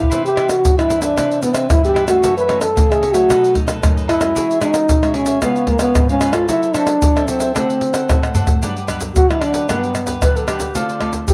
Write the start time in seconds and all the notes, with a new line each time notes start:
Already playing: E4
0.03 surdo
0.10 C3 E3 B3 D4 E4 B4 C5 E5, pandeiro, shaker, surdo
0.24 G4 B4 C5 E5, pandeiro, shaker
0.36 E3 B3 D4 E4 B4 C5 E5, pandeiro, tamborim
0.48 F#4, muted cavaquinho stroke, pandeiro, tamborim, shaker
0.65 G2, pandeiro, shaker, surdo
0.77 E3 B3 D4 E4 B4 C5 E5, pandeiro, tamborim, shaker
0.88 E4 B4 C5 E5, pandeiro, shaker
1.01 D4 B4 C5 E5, pandeiro, shaker
1.16 C3 E3 B3 D4 E4 B4 C5 E5, pandeiro, tamborim, shaker, surdo
1.30 B4 C5 E5, pandeiro, shaker
1.42 E3 B3 D4, muted cavaquinho stroke, pandeiro, shaker
1.53 C4 B4 C5 E5, pandeiro, tamborim, shaker
1.70 G2 E4, pandeiro, tamborim, shaker, surdo
1.83 E3 B3 D4 G4 B4 C5 E5, pandeiro, shaker
1.94 E4 B4 C5 E5, pandeiro, tamborim
2.07 E3 A3 C#4 F#4 B4 C5 E5, pandeiro, tamborim, shaker
2.22 F#2 F#4 A4 C#5 E5, pandeiro, shaker, surdo
2.36 A4 B4 C#5 E5, pandeiro, shaker
2.48 E3 A3 C#4 F#4 A4 C#5 E5, pandeiro, tamborim
2.60 A4, muted cavaquinho stroke, pandeiro, tamborim, shaker
2.76 C#3 E3 A3 C#4, pandeiro, shaker, surdo
2.89 G#4 A4 C#5 E5, pandeiro, tamborim, shaker
3.01 F#4 A4 C#5 E5, pandeiro
3.13 F#3 A3 D#4 F#4 A4 C#5 E5, pandeiro, shaker
3.28 B2 D#4 A4 B4 D#5, pandeiro, tamborim, shaker, surdo
3.43 A4 B4 D#5, pandeiro, shaker
3.54 F#3 A3 D#4, muted cavaquinho stroke, pandeiro, surdo
3.66 A4 B4 D#5, pandeiro, tamborim, shaker
3.82 F#2 F#3 A3 D#4, pandeiro, tamborim, shaker, surdo
3.96 A4 B4 D#5, pandeiro, shaker
4.08 D#4 E4 A4 B4 D#5, pandeiro, tamborim
4.20 G#3 C#4 F#4 A4 B4 D#5, pandeiro, tamborim, shaker
4.35 E3 E4 G#4 C#5 E5, pandeiro, shaker, surdo
4.49 G#4 C#5 E5, pandeiro, shaker
4.60 G#3 C#4 D#4 E4 F#4 G#4 C#5 E5, pandeiro, tamborim, shaker
4.73 muted cavaquinho stroke, pandeiro, tamborim, shaker
4.89 B2, pandeiro, shaker, surdo
5.02 G#3 C#4 F#4 G#4 C#5 E5, pandeiro, tamborim, shaker
5.14 C#4 E4 G#4 C#5 E5, pandeiro
5.26 G#4 C#5 E5, pandeiro, shaker
5.41 C#3 G#3 B3 F4 B4 C#5 F5, pandeiro, tamborim, shaker, surdo
5.56 B4 C#5 F5, pandeiro, shaker
5.67 G#3 A#3 B3 F4, muted cavaquinho stroke, pandeiro, surdo
5.79 B3 B4 C#5 F5, pandeiro, tamborim, shaker
5.95 G#2, pandeiro, tamborim, shaker, surdo
6.09 G#3 B3 C#4 F4 B4 C#5 F5, pandeiro, shaker
6.21 F4 B4 C#5 F5, pandeiro, tamborim, shaker
6.33 C4 E4 F4 A4 B4 C#5 F5, pandeiro, tamborim, shaker
6.48 F#3 E4 F#4 A4 C5 E5, pandeiro, shaker, surdo
6.63 A4 C5 E5, pandeiro, shaker
6.73 C4 D4 E4 F#4 A4 C5 E5, pandeiro, tamborim, shaker
6.86 muted cavaquinho stroke, pandeiro, tamborim, shaker
7.02 F#3, pandeiro, shaker, surdo
7.16 C4 E4 A4 C5 E5, pandeiro, tamborim, shaker
7.27 C4 F#4 A4 C5 E5, pandeiro, shaker
7.39 A4 C5 E5, pandeiro, shaker
7.55 D3 A3 C4 D4 F#4 A4 C5 F#5, pandeiro, tamborim, shaker, surdo
7.69 A4 C5 F#5, pandeiro, shaker
7.80 muted cavaquinho stroke, pandeiro
7.93 A4 C5 F#5, pandeiro, tamborim, shaker
8.08 A2 A3 C4 F#4, pandeiro, tamborim, shaker, surdo
8.22 A4 C5 F#5, pandeiro, tamborim, shaker
8.34 A3 C4 D4 F#4 A4 C5 F#5, surdo, pandeiro, shaker
8.46 A4 C5 F#5, pandeiro, shaker, surdo
8.62 G2 F#3 B3 D4 G4 B4 F#5, pandeiro, shaker, surdo
8.76 G4 B4 F#5, pandeiro, shaker
8.87 F#3 B3 D4 G4 B4 F#5, pandeiro, tamborim, shaker, surdo
9.00 muted cavaquinho stroke, pandeiro, shaker, surdo
9.16 D3 F#4, pandeiro, shaker, surdo
9.29 F#3 B3 D4 E4 G4 B4 F#5, pandeiro, tamborim, shaker
9.40 D4 G4 B4 F#5, pandeiro, tamborim
9.52 G4 B4 F#5, pandeiro, shaker, surdo
9.68 G2 F#3 B3 D4 G4 B4 F#5, pandeiro, tamborim, shaker, surdo
9.83 G4 B4 F#5, pandeiro, shaker
9.94 muted cavaquinho stroke, pandeiro, tamborim, shaker
10.06 G4 B4 F#5, pandeiro, shaker, surdo
10.22 D3 F#3 B3 D4 B4, pandeiro, tamborim, shaker, surdo
10.35 G4 A4 B4 F#5, pandeiro, shaker
10.47 F#3 B3 D4 G4 B4 F#5, pandeiro, tamborim, shaker
10.59 G4 B4 F#5, pandeiro, shaker, surdo
10.75 D3 A3 C4 F4 A4 C5 D5, pandeiro, shaker, surdo
10.89 A4 C5 D5, pandeiro, shaker
11.00 A3 C4 F4 A4 C5 D5, pandeiro, tamborim, surdo
11.13 muted cavaquinho stroke, pandeiro, shaker, surdo
11.28 A2 G4, pandeiro, shaker, surdo